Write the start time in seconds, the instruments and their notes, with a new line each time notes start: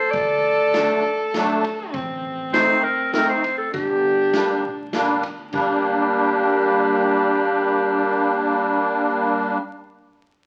Already playing: violin A4, clarinet C5
0.11 upright bass D2, clarinet D5, kick, ride
0.73 accordion F#3 A3 D4, snare, ride
1.34 accordion F#3 A3 D4, snare, ride
1.64 ride
1.93 upright bass A1, violin C4, kick, ride
2.53 accordion A3 C4 D#4, clarinet C5, snare, ride
2.83 clarinet A#4
3.13 accordion A3 C4 D#4, clarinet A#4, snare, ride
3.29 clarinet C5
3.44 ride
3.58 clarinet A4
3.73 upright bass G1, violin D4, clarinet G4, kick, ride
4.32 accordion G3 A#3 D4, snare, ride
4.65 upright bass A#1
4.92 upright bass A1, accordion G3 A#3 D4, snare, ride
5.23 upright bass G1, ride
5.53 upright bass G1, accordion G3 A#3 D4, violin D4, clarinet G4, kick, crash